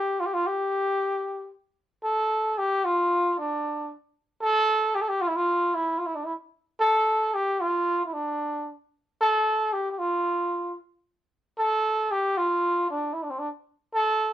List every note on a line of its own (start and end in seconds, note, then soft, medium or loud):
0.00 0.21 G4 medium
0.20 0.27 F4 medium
0.26 0.35 G4 medium
0.34 0.48 F4 medium
0.46 1.52 G4 medium
2.04 2.60 A4 medium
2.58 2.86 G4 medium
2.85 3.37 F4 medium
3.38 3.93 D4 medium
4.42 4.97 A4 loud
4.95 5.03 G4 medium
5.01 5.10 A4 medium
5.09 5.23 G4 medium
5.21 5.29 F4 medium
5.28 5.37 E4 medium
5.36 5.76 F4 medium
5.74 6.00 E4 medium
5.98 6.07 F4 medium
6.06 6.17 E4 medium
6.15 6.26 D4 medium
6.24 6.34 E4 medium
6.80 7.36 A4 loud
7.34 7.62 G4 medium
7.61 8.05 F4 medium
8.06 8.15 E4 soft
8.13 8.72 D4 medium
9.21 9.74 A4 loud
9.73 9.91 G4 medium
9.91 10.00 G4 medium
9.99 10.78 F4 medium
11.58 12.13 A4 loud
12.11 12.39 G4 medium
12.37 12.90 F4 medium
12.90 13.15 D4 medium
13.13 13.24 E4 medium
13.23 13.32 D4 medium
13.30 13.40 C4 medium
13.39 13.49 D4 medium
13.95 14.33 A4 loud